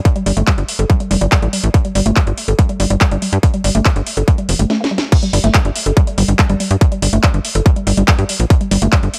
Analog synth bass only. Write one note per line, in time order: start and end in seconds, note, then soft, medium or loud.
0.26 0.32 G1 medium
0.37 0.43 G1 medium
0.58 0.64 G1 medium
0.79 0.85 G1 medium
1.11 1.17 F1 medium
1.21 1.27 G1 medium
1.42 1.48 A1 medium
1.64 1.69 A1 medium
1.95 2.01 G1 medium
2.06 2.12 G1 medium
2.27 2.33 G1 medium
2.48 2.54 G1 medium
2.80 2.86 G1 loud
2.90 2.96 G1 medium
3.11 3.17 G1 medium
3.33 3.38 G2 medium
3.64 3.70 G1 medium
3.75 3.81 G1 medium
3.96 4.02 G1 medium
4.17 4.23 G1 medium
4.49 4.55 F1 loud
4.59 4.65 G1 medium
5.33 5.39 G1 medium
5.44 5.50 G1 medium
5.65 5.71 G1 medium
5.86 5.92 G1 medium
6.18 6.24 G1 medium
6.28 6.34 G1 medium
6.50 6.55 G1 medium
6.71 6.77 G2 medium
7.02 7.08 G1 medium
7.13 7.19 G1 medium
7.34 7.40 G1 medium
7.55 7.61 G1 medium
7.87 7.93 G1 medium
7.97 8.03 G1 medium
8.19 8.24 G2 medium
8.40 8.46 A#1 medium
8.71 8.77 G1 medium
8.82 8.88 G1 medium
9.03 9.09 G1 medium